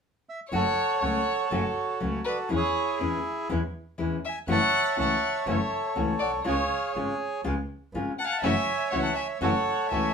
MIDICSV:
0, 0, Header, 1, 6, 480
1, 0, Start_track
1, 0, Key_signature, 3, "minor"
1, 0, Tempo, 493827
1, 514, Time_signature, 4, 2, 24, 8
1, 9854, End_track
2, 0, Start_track
2, 0, Title_t, "Bandoneon"
2, 0, Program_c, 0, 23
2, 284, Note_on_c, 0, 76, 72
2, 390, Note_off_c, 0, 76, 0
2, 524, Note_on_c, 0, 78, 84
2, 539, Note_on_c, 0, 69, 62
2, 541, Note_on_c, 0, 73, 65
2, 969, Note_off_c, 0, 78, 0
2, 995, Note_on_c, 0, 78, 81
2, 1002, Note_off_c, 0, 73, 0
2, 1003, Note_off_c, 0, 69, 0
2, 1016, Note_on_c, 0, 73, 59
2, 1018, Note_on_c, 0, 69, 62
2, 1445, Note_off_c, 0, 78, 0
2, 1478, Note_off_c, 0, 73, 0
2, 1493, Note_on_c, 0, 73, 60
2, 1501, Note_off_c, 0, 69, 0
2, 1515, Note_on_c, 0, 69, 49
2, 1519, Note_on_c, 0, 66, 47
2, 1935, Note_off_c, 0, 73, 0
2, 2219, Note_on_c, 0, 74, 76
2, 2323, Note_off_c, 0, 74, 0
2, 2421, Note_off_c, 0, 69, 0
2, 2423, Note_off_c, 0, 66, 0
2, 2488, Note_on_c, 0, 73, 90
2, 2494, Note_on_c, 0, 68, 64
2, 2497, Note_on_c, 0, 64, 59
2, 2912, Note_off_c, 0, 73, 0
2, 3385, Note_off_c, 0, 68, 0
2, 3387, Note_off_c, 0, 64, 0
2, 4171, Note_on_c, 0, 80, 80
2, 4266, Note_off_c, 0, 80, 0
2, 4384, Note_on_c, 0, 76, 64
2, 4385, Note_on_c, 0, 73, 72
2, 4395, Note_on_c, 0, 81, 99
2, 4821, Note_off_c, 0, 81, 0
2, 4839, Note_off_c, 0, 73, 0
2, 4846, Note_off_c, 0, 76, 0
2, 4853, Note_on_c, 0, 73, 63
2, 4860, Note_on_c, 0, 76, 62
2, 4865, Note_on_c, 0, 81, 85
2, 5296, Note_off_c, 0, 81, 0
2, 5323, Note_off_c, 0, 73, 0
2, 5324, Note_off_c, 0, 76, 0
2, 5338, Note_on_c, 0, 73, 51
2, 5338, Note_on_c, 0, 76, 65
2, 5344, Note_on_c, 0, 69, 50
2, 5772, Note_off_c, 0, 76, 0
2, 6042, Note_on_c, 0, 78, 73
2, 6147, Note_off_c, 0, 78, 0
2, 6243, Note_off_c, 0, 73, 0
2, 6247, Note_off_c, 0, 69, 0
2, 6290, Note_on_c, 0, 77, 80
2, 6299, Note_on_c, 0, 68, 62
2, 6300, Note_on_c, 0, 73, 61
2, 6726, Note_off_c, 0, 77, 0
2, 7204, Note_off_c, 0, 68, 0
2, 7205, Note_off_c, 0, 73, 0
2, 7967, Note_on_c, 0, 81, 78
2, 8015, Note_off_c, 0, 81, 0
2, 8027, Note_on_c, 0, 80, 67
2, 8078, Note_off_c, 0, 80, 0
2, 8089, Note_on_c, 0, 81, 78
2, 8192, Note_off_c, 0, 81, 0
2, 8197, Note_on_c, 0, 80, 87
2, 8199, Note_on_c, 0, 76, 67
2, 8207, Note_on_c, 0, 73, 71
2, 8641, Note_off_c, 0, 80, 0
2, 8666, Note_on_c, 0, 78, 75
2, 8776, Note_on_c, 0, 81, 75
2, 8792, Note_off_c, 0, 78, 0
2, 8894, Note_off_c, 0, 81, 0
2, 8901, Note_on_c, 0, 80, 73
2, 9011, Note_off_c, 0, 80, 0
2, 9116, Note_off_c, 0, 76, 0
2, 9120, Note_off_c, 0, 73, 0
2, 9157, Note_on_c, 0, 78, 85
2, 9174, Note_on_c, 0, 69, 61
2, 9174, Note_on_c, 0, 73, 60
2, 9599, Note_off_c, 0, 78, 0
2, 9633, Note_on_c, 0, 80, 73
2, 9640, Note_off_c, 0, 73, 0
2, 9655, Note_on_c, 0, 73, 57
2, 9657, Note_on_c, 0, 76, 60
2, 9854, Note_off_c, 0, 69, 0
2, 9854, Note_off_c, 0, 73, 0
2, 9854, Note_off_c, 0, 76, 0
2, 9854, Note_off_c, 0, 80, 0
2, 9854, End_track
3, 0, Start_track
3, 0, Title_t, "Violin"
3, 0, Program_c, 1, 40
3, 488, Note_on_c, 1, 73, 77
3, 949, Note_off_c, 1, 73, 0
3, 961, Note_on_c, 1, 73, 67
3, 1426, Note_off_c, 1, 73, 0
3, 1442, Note_on_c, 1, 69, 51
3, 1908, Note_off_c, 1, 69, 0
3, 2184, Note_on_c, 1, 71, 68
3, 2296, Note_off_c, 1, 71, 0
3, 2427, Note_on_c, 1, 68, 70
3, 2879, Note_off_c, 1, 68, 0
3, 4130, Note_on_c, 1, 76, 63
3, 4235, Note_off_c, 1, 76, 0
3, 4361, Note_on_c, 1, 78, 76
3, 4803, Note_off_c, 1, 78, 0
3, 4822, Note_on_c, 1, 78, 62
3, 5273, Note_off_c, 1, 78, 0
3, 5301, Note_on_c, 1, 73, 55
3, 5752, Note_off_c, 1, 73, 0
3, 6018, Note_on_c, 1, 74, 68
3, 6129, Note_off_c, 1, 74, 0
3, 6266, Note_on_c, 1, 73, 70
3, 6713, Note_off_c, 1, 73, 0
3, 7957, Note_on_c, 1, 78, 64
3, 8006, Note_off_c, 1, 78, 0
3, 8012, Note_on_c, 1, 77, 52
3, 8038, Note_off_c, 1, 77, 0
3, 8044, Note_on_c, 1, 78, 55
3, 8168, Note_off_c, 1, 78, 0
3, 8174, Note_on_c, 1, 76, 75
3, 8629, Note_off_c, 1, 76, 0
3, 8651, Note_on_c, 1, 73, 60
3, 8763, Note_off_c, 1, 73, 0
3, 8769, Note_on_c, 1, 78, 63
3, 8887, Note_off_c, 1, 78, 0
3, 8893, Note_on_c, 1, 76, 69
3, 9004, Note_off_c, 1, 76, 0
3, 9136, Note_on_c, 1, 73, 66
3, 9588, Note_off_c, 1, 73, 0
3, 9610, Note_on_c, 1, 76, 65
3, 9854, Note_off_c, 1, 76, 0
3, 9854, End_track
4, 0, Start_track
4, 0, Title_t, "String section"
4, 0, Program_c, 2, 48
4, 8182, Note_on_c, 2, 57, 62
4, 8184, Note_on_c, 2, 64, 54
4, 8186, Note_on_c, 2, 66, 69
4, 8389, Note_off_c, 2, 57, 0
4, 8390, Note_off_c, 2, 64, 0
4, 8390, Note_off_c, 2, 66, 0
4, 8665, Note_on_c, 2, 57, 38
4, 8666, Note_on_c, 2, 64, 36
4, 8670, Note_on_c, 2, 66, 46
4, 8870, Note_off_c, 2, 57, 0
4, 8870, Note_off_c, 2, 64, 0
4, 8872, Note_off_c, 2, 66, 0
4, 9145, Note_on_c, 2, 57, 64
4, 9148, Note_on_c, 2, 64, 54
4, 9149, Note_on_c, 2, 66, 60
4, 9349, Note_off_c, 2, 57, 0
4, 9350, Note_off_c, 2, 64, 0
4, 9351, Note_off_c, 2, 66, 0
4, 9632, Note_on_c, 2, 57, 40
4, 9635, Note_on_c, 2, 64, 38
4, 9637, Note_on_c, 2, 66, 46
4, 9831, Note_off_c, 2, 57, 0
4, 9833, Note_off_c, 2, 64, 0
4, 9833, Note_off_c, 2, 66, 0
4, 9854, End_track
5, 0, Start_track
5, 0, Title_t, "Nylon-string guitar"
5, 0, Program_c, 3, 24
5, 503, Note_on_c, 3, 49, 66
5, 507, Note_on_c, 3, 54, 64
5, 513, Note_on_c, 3, 66, 75
5, 515, Note_on_c, 3, 61, 74
5, 516, Note_on_c, 3, 57, 73
5, 596, Note_off_c, 3, 49, 0
5, 598, Note_off_c, 3, 54, 0
5, 601, Note_off_c, 3, 66, 0
5, 602, Note_off_c, 3, 61, 0
5, 603, Note_off_c, 3, 57, 0
5, 989, Note_on_c, 3, 49, 49
5, 994, Note_on_c, 3, 54, 48
5, 996, Note_on_c, 3, 57, 47
5, 999, Note_on_c, 3, 61, 51
5, 1003, Note_on_c, 3, 66, 52
5, 1158, Note_off_c, 3, 49, 0
5, 1161, Note_off_c, 3, 54, 0
5, 1162, Note_off_c, 3, 57, 0
5, 1163, Note_off_c, 3, 61, 0
5, 1166, Note_off_c, 3, 66, 0
5, 1468, Note_on_c, 3, 49, 66
5, 1471, Note_on_c, 3, 54, 74
5, 1477, Note_on_c, 3, 57, 64
5, 1477, Note_on_c, 3, 61, 80
5, 1478, Note_on_c, 3, 66, 81
5, 1561, Note_off_c, 3, 49, 0
5, 1562, Note_off_c, 3, 54, 0
5, 1566, Note_off_c, 3, 57, 0
5, 1566, Note_off_c, 3, 61, 0
5, 1566, Note_off_c, 3, 66, 0
5, 1948, Note_on_c, 3, 49, 51
5, 1948, Note_on_c, 3, 54, 52
5, 1949, Note_on_c, 3, 61, 57
5, 1950, Note_on_c, 3, 57, 54
5, 1954, Note_on_c, 3, 66, 57
5, 2119, Note_off_c, 3, 49, 0
5, 2119, Note_off_c, 3, 54, 0
5, 2120, Note_off_c, 3, 57, 0
5, 2120, Note_off_c, 3, 61, 0
5, 2123, Note_off_c, 3, 66, 0
5, 2420, Note_on_c, 3, 52, 70
5, 2424, Note_on_c, 3, 56, 72
5, 2429, Note_on_c, 3, 61, 71
5, 2435, Note_on_c, 3, 64, 77
5, 2518, Note_off_c, 3, 52, 0
5, 2520, Note_off_c, 3, 56, 0
5, 2522, Note_off_c, 3, 61, 0
5, 2526, Note_off_c, 3, 64, 0
5, 2911, Note_on_c, 3, 52, 49
5, 2920, Note_on_c, 3, 61, 53
5, 2922, Note_on_c, 3, 56, 54
5, 2924, Note_on_c, 3, 64, 56
5, 3080, Note_off_c, 3, 52, 0
5, 3084, Note_off_c, 3, 61, 0
5, 3085, Note_off_c, 3, 56, 0
5, 3086, Note_off_c, 3, 64, 0
5, 3393, Note_on_c, 3, 52, 70
5, 3399, Note_on_c, 3, 56, 74
5, 3399, Note_on_c, 3, 61, 72
5, 3403, Note_on_c, 3, 64, 78
5, 3482, Note_off_c, 3, 52, 0
5, 3485, Note_off_c, 3, 56, 0
5, 3485, Note_off_c, 3, 61, 0
5, 3487, Note_off_c, 3, 64, 0
5, 3868, Note_on_c, 3, 52, 56
5, 3870, Note_on_c, 3, 56, 53
5, 3873, Note_on_c, 3, 64, 64
5, 3875, Note_on_c, 3, 61, 65
5, 4036, Note_off_c, 3, 52, 0
5, 4037, Note_off_c, 3, 56, 0
5, 4039, Note_off_c, 3, 64, 0
5, 4040, Note_off_c, 3, 61, 0
5, 4352, Note_on_c, 3, 49, 68
5, 4353, Note_on_c, 3, 52, 74
5, 4353, Note_on_c, 3, 61, 73
5, 4355, Note_on_c, 3, 57, 82
5, 4361, Note_on_c, 3, 66, 78
5, 4440, Note_off_c, 3, 49, 0
5, 4441, Note_off_c, 3, 52, 0
5, 4441, Note_off_c, 3, 61, 0
5, 4442, Note_off_c, 3, 57, 0
5, 4445, Note_off_c, 3, 66, 0
5, 4824, Note_on_c, 3, 52, 49
5, 4827, Note_on_c, 3, 49, 50
5, 4828, Note_on_c, 3, 57, 56
5, 4830, Note_on_c, 3, 61, 52
5, 4834, Note_on_c, 3, 66, 59
5, 4993, Note_off_c, 3, 52, 0
5, 4994, Note_off_c, 3, 49, 0
5, 4995, Note_off_c, 3, 57, 0
5, 4996, Note_off_c, 3, 61, 0
5, 4998, Note_off_c, 3, 66, 0
5, 5310, Note_on_c, 3, 52, 74
5, 5311, Note_on_c, 3, 57, 75
5, 5312, Note_on_c, 3, 49, 70
5, 5313, Note_on_c, 3, 61, 73
5, 5318, Note_on_c, 3, 66, 78
5, 5398, Note_off_c, 3, 52, 0
5, 5398, Note_off_c, 3, 57, 0
5, 5399, Note_off_c, 3, 49, 0
5, 5399, Note_off_c, 3, 61, 0
5, 5402, Note_off_c, 3, 66, 0
5, 5785, Note_on_c, 3, 49, 50
5, 5788, Note_on_c, 3, 52, 52
5, 5792, Note_on_c, 3, 61, 60
5, 5793, Note_on_c, 3, 66, 58
5, 5795, Note_on_c, 3, 57, 52
5, 5952, Note_off_c, 3, 49, 0
5, 5954, Note_off_c, 3, 52, 0
5, 5956, Note_off_c, 3, 61, 0
5, 5956, Note_off_c, 3, 66, 0
5, 5957, Note_off_c, 3, 57, 0
5, 6262, Note_on_c, 3, 49, 67
5, 6264, Note_on_c, 3, 56, 73
5, 6267, Note_on_c, 3, 65, 78
5, 6269, Note_on_c, 3, 61, 68
5, 6272, Note_on_c, 3, 68, 75
5, 6352, Note_off_c, 3, 49, 0
5, 6353, Note_off_c, 3, 56, 0
5, 6355, Note_off_c, 3, 65, 0
5, 6356, Note_off_c, 3, 61, 0
5, 6358, Note_off_c, 3, 68, 0
5, 6755, Note_on_c, 3, 49, 51
5, 6763, Note_on_c, 3, 56, 49
5, 6765, Note_on_c, 3, 65, 53
5, 6766, Note_on_c, 3, 61, 50
5, 6768, Note_on_c, 3, 68, 57
5, 6916, Note_off_c, 3, 49, 0
5, 6920, Note_off_c, 3, 56, 0
5, 6921, Note_off_c, 3, 61, 0
5, 6921, Note_off_c, 3, 65, 0
5, 6923, Note_off_c, 3, 68, 0
5, 7234, Note_on_c, 3, 65, 72
5, 7235, Note_on_c, 3, 49, 68
5, 7235, Note_on_c, 3, 61, 70
5, 7238, Note_on_c, 3, 56, 72
5, 7239, Note_on_c, 3, 68, 75
5, 7319, Note_off_c, 3, 49, 0
5, 7319, Note_off_c, 3, 61, 0
5, 7319, Note_off_c, 3, 65, 0
5, 7321, Note_off_c, 3, 56, 0
5, 7321, Note_off_c, 3, 68, 0
5, 7723, Note_on_c, 3, 49, 52
5, 7726, Note_on_c, 3, 56, 54
5, 7726, Note_on_c, 3, 61, 51
5, 7728, Note_on_c, 3, 65, 58
5, 7728, Note_on_c, 3, 68, 58
5, 7881, Note_off_c, 3, 49, 0
5, 7883, Note_off_c, 3, 56, 0
5, 7883, Note_off_c, 3, 61, 0
5, 7884, Note_off_c, 3, 65, 0
5, 7884, Note_off_c, 3, 68, 0
5, 8195, Note_on_c, 3, 49, 70
5, 8196, Note_on_c, 3, 57, 64
5, 8201, Note_on_c, 3, 61, 71
5, 8201, Note_on_c, 3, 66, 71
5, 8203, Note_on_c, 3, 52, 69
5, 8280, Note_off_c, 3, 49, 0
5, 8281, Note_off_c, 3, 57, 0
5, 8283, Note_off_c, 3, 61, 0
5, 8283, Note_off_c, 3, 66, 0
5, 8284, Note_off_c, 3, 52, 0
5, 8671, Note_on_c, 3, 57, 52
5, 8672, Note_on_c, 3, 49, 47
5, 8672, Note_on_c, 3, 52, 53
5, 8677, Note_on_c, 3, 66, 56
5, 8682, Note_on_c, 3, 61, 54
5, 8836, Note_off_c, 3, 49, 0
5, 8836, Note_off_c, 3, 52, 0
5, 8836, Note_off_c, 3, 57, 0
5, 8839, Note_off_c, 3, 66, 0
5, 8841, Note_off_c, 3, 61, 0
5, 9145, Note_on_c, 3, 49, 67
5, 9146, Note_on_c, 3, 52, 78
5, 9153, Note_on_c, 3, 57, 67
5, 9153, Note_on_c, 3, 61, 74
5, 9156, Note_on_c, 3, 66, 78
5, 9235, Note_off_c, 3, 49, 0
5, 9235, Note_off_c, 3, 52, 0
5, 9238, Note_off_c, 3, 61, 0
5, 9239, Note_off_c, 3, 57, 0
5, 9240, Note_off_c, 3, 66, 0
5, 9628, Note_on_c, 3, 49, 55
5, 9632, Note_on_c, 3, 52, 57
5, 9637, Note_on_c, 3, 57, 54
5, 9641, Note_on_c, 3, 61, 52
5, 9643, Note_on_c, 3, 66, 62
5, 9792, Note_off_c, 3, 49, 0
5, 9794, Note_off_c, 3, 52, 0
5, 9797, Note_off_c, 3, 57, 0
5, 9799, Note_off_c, 3, 61, 0
5, 9800, Note_off_c, 3, 66, 0
5, 9854, End_track
6, 0, Start_track
6, 0, Title_t, "Double bass"
6, 0, Program_c, 4, 43
6, 510, Note_on_c, 4, 30, 71
6, 715, Note_off_c, 4, 30, 0
6, 991, Note_on_c, 4, 37, 45
6, 1197, Note_off_c, 4, 37, 0
6, 1476, Note_on_c, 4, 30, 74
6, 1680, Note_off_c, 4, 30, 0
6, 1959, Note_on_c, 4, 37, 44
6, 2162, Note_off_c, 4, 37, 0
6, 2432, Note_on_c, 4, 40, 69
6, 2638, Note_off_c, 4, 40, 0
6, 2917, Note_on_c, 4, 40, 45
6, 3119, Note_off_c, 4, 40, 0
6, 3403, Note_on_c, 4, 40, 74
6, 3601, Note_off_c, 4, 40, 0
6, 3888, Note_on_c, 4, 40, 49
6, 4083, Note_off_c, 4, 40, 0
6, 4356, Note_on_c, 4, 30, 68
6, 4557, Note_off_c, 4, 30, 0
6, 4843, Note_on_c, 4, 37, 50
6, 5039, Note_off_c, 4, 37, 0
6, 5318, Note_on_c, 4, 30, 75
6, 5516, Note_off_c, 4, 30, 0
6, 5798, Note_on_c, 4, 37, 52
6, 5995, Note_off_c, 4, 37, 0
6, 6029, Note_on_c, 4, 35, 45
6, 6269, Note_off_c, 4, 35, 0
6, 6275, Note_on_c, 4, 37, 72
6, 6473, Note_off_c, 4, 37, 0
6, 6753, Note_on_c, 4, 32, 49
6, 6952, Note_off_c, 4, 32, 0
6, 7233, Note_on_c, 4, 37, 71
6, 7433, Note_off_c, 4, 37, 0
6, 7711, Note_on_c, 4, 32, 48
6, 7912, Note_off_c, 4, 32, 0
6, 8196, Note_on_c, 4, 30, 72
6, 8396, Note_off_c, 4, 30, 0
6, 8682, Note_on_c, 4, 37, 47
6, 8878, Note_off_c, 4, 37, 0
6, 9156, Note_on_c, 4, 30, 77
6, 9354, Note_off_c, 4, 30, 0
6, 9635, Note_on_c, 4, 37, 48
6, 9833, Note_off_c, 4, 37, 0
6, 9854, End_track
0, 0, End_of_file